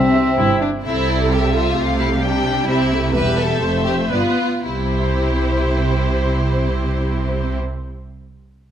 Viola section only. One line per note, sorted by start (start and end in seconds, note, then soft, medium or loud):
0.15 0.32 C4 soft
0.15 0.32 G4 soft
0.37 0.60 E4 soft
0.61 0.69 D4 soft
0.85 1.28 C4 soft
0.85 1.73 A4 soft
1.31 1.77 G3 soft
1.77 2.22 A3 soft
1.77 3.14 G4 soft
2.23 2.68 G3 soft
2.68 2.91 C4 soft
2.91 3.14 A3 soft
3.15 3.62 G3 soft
3.15 3.61 G4 soft
3.62 4.11 A3 soft
3.62 4.12 C5 soft
4.12 4.41 B3 soft
4.12 4.42 B4 soft
4.64 7.55 C4 soft
4.64 7.55 G4 soft